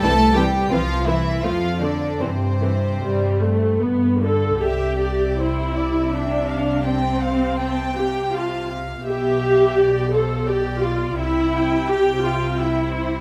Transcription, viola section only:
\new Staff \with { instrumentName = "Viola section" } { \time 3/4 \key c \major \tempo 4 = 82 <e c'>8 <e c'>8 <e c'>8 <e c'>8 <a c'>8 <a c'>8 | <e c'>8 <e c'>8 g8 a8 b8 <d a'>8 | g'4 e'4 d'4 | c'4. g'8 f'8 r8 |
g'4. a'8 g'8 f'8 | e'4 g'8 f'8 e'4 | }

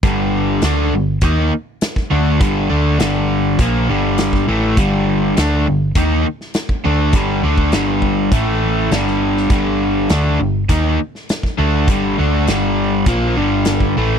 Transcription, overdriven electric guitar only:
\new Staff \with { instrumentName = "Overdriven electric guitar" } { \clef bass \time 4/4 \key g \minor \tempo 4 = 101 <g, d g>4 <d a d'>8 <g, d>8 <ees bes ees'>8 r4 <d a d'>8 | <g, d g>8 <d a d'>8 <g, d g>4 <bes, f bes>8 <g, d g>4 <a, e a>8 | <g, d g>4 <d a d'>8 <g, d>8 <ees bes ees'>8 r4 <d a d'>8 | <g, d g>8 <d a d'>8 <g, d g>4 <a, e a>4 <g, d g>4 |
<g, d g>4 <d a d'>8 <g, d>8 <ees bes ees'>8 r4 <d a d'>8 | <g, d g>8 <d a d'>8 <g, d g>4 <bes, f bes>8 <g, d g>4 <a, e a>8 | }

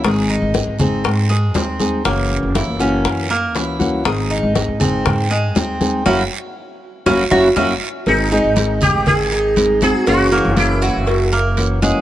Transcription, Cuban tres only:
\new Staff \with { instrumentName = "Cuban tres" } { \time 4/4 \key aes \major \tempo 4 = 120 aes'8 ees'4 c'4 aes8 c'4 | bes4 fes'8 des'4 bes8 fes'4 | aes'8 ees'4 c'4 aes8 c'4 | <des' fes' ges'>8 r4. <des' fes' ges'>8 <des' fes' ges'>8 <des' fes' ges'>8 r8 |
r8 ees'4 aes'4 ees'4 ges'8 | ges'8 bes4 ges'4 bes4 aes8 | }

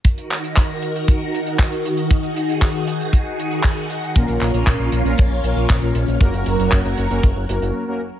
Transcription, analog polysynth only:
\new Staff \with { instrumentName = "Analog polysynth" } { \time 4/4 \key ees \minor \tempo 4 = 117 r1 | r1 | <bes, bes des' f' bes'>8. <bes, bes des' f' bes'>4 <bes, bes des' f' bes'>16 r8 <bes, bes des' f' bes'>8. <bes, bes des' f' bes'>16 r8 | <bes des' ges' bes'>8. <bes des' ges' bes'>4 <bes des' ges' bes'>16 r8 <bes des' ges' bes'>8. <bes des' ges' bes'>16 r8 | }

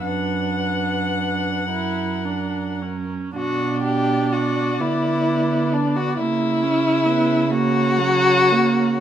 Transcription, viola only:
\new Staff \with { instrumentName = "Viola" } { \time 6/8 \key b \minor \tempo 4. = 41 d'4. e'8 d'8 cis'8 | d'4. b4. | ais8 cis'8 b8 ais8 fis8 ais8 | }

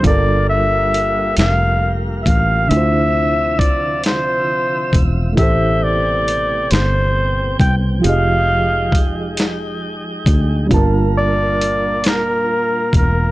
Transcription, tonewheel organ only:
<<
  \new Staff \with { instrumentName = "Tonewheel organ" } { \time 6/8 \key g \dorian \tempo 4. = 45 f'2. | e''2. | g''2.~ | g''2. |
f'2. | }
  \new Staff \with { instrumentName = "Tonewheel organ" } { \clef bass \time 6/8 \key g \dorian <g bes>2. | <c f>2. | <b, c>2. | <aes ees'>2. |
<bes, bes>2. | }
>>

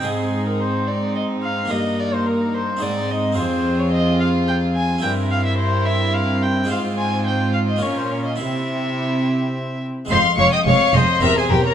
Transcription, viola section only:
\new Staff \with { instrumentName = "Viola section" } { \time 3/4 \key aes \lydian \tempo 4 = 108 c'2. | bes2 c'4~ | \key f \minor c'2. | c'2.~ |
c'2 des'4 | c'2~ c'8 r8 | aes8 aes8 aes8 aes8 c'8 c'8 | }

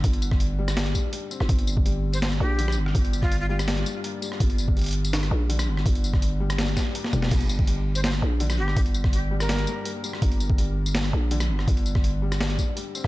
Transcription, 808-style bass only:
\new Staff \with { instrumentName = "808-style bass" } { \clef bass \time 4/4 \key g \minor \tempo 4 = 165 g,,2~ g,,8 r4 r16 g,,16 | g,,2~ g,,8 bes,,4 g,,8 | g,,2~ g,,8 r4. | g,,2~ g,,8 bes,,4 g,,8 |
g,,2~ g,,8 r4 f,,8 | g,,2~ g,,8 bes,,4 g,,8 | g,,2~ g,,8 r4. | g,,2~ g,,8 bes,,4 g,,8 |
g,,2~ g,,8 r4. | }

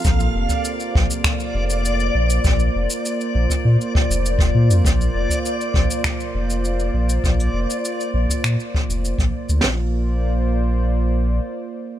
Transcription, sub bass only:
\new Staff \with { instrumentName = "Sub bass" } { \clef bass \time 4/4 \key bes \major \tempo 4 = 100 bes,,8 f,,16 r8. bes,,16 r8. f,,4 bes,,8 | bes,,8 f,,16 r8. bes,,16 r16 bes,16 r8 f,,8 f,,16 bes,16 f,16 | bes,,8 f,,16 r8. bes,,16 r8. f,,4 bes,,8 | bes,,8 f,,16 r8. bes,,16 r16 bes,16 r8 f,,8 bes,,16 r16 d,16 |
bes,,2. r4 | }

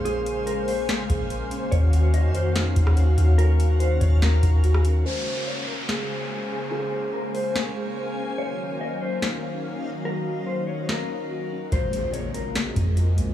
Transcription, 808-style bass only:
\new Staff \with { instrumentName = "808-style bass" } { \clef bass \time 4/4 \key bes \minor \tempo 4 = 144 bes,,2~ bes,,8 bes,,4 r8 | ees,4~ ees,16 f,4~ f,16 ees,4 ees,8~ | ees,4. ees,4 ees,4. | r1 |
r1 | r1 | r1 | bes,,2~ bes,,8 f,4 bes,,8 | }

